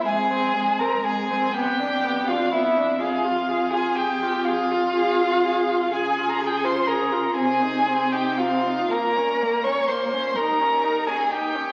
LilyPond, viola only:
\new Staff \with { instrumentName = "Viola" } { \time 6/8 \key f \minor \tempo 4. = 41 aes16 c'16 aes16 c'16 aes16 c'16 b16 d'16 b16 d'16 b16 d'16 | aes'16 f'16 aes'16 f'16 aes'16 f'16 aes'16 f'16 aes'16 f'16 aes'16 f'16 | aes'16 f'16 aes'16 f'16 aes'16 f'16 c'16 ees'16 c'16 ees'16 c'16 ees'16 | bes16 des'16 bes16 des'16 bes16 des'16 ees'16 des'16 ees'16 des'16 ees'16 des'16 | }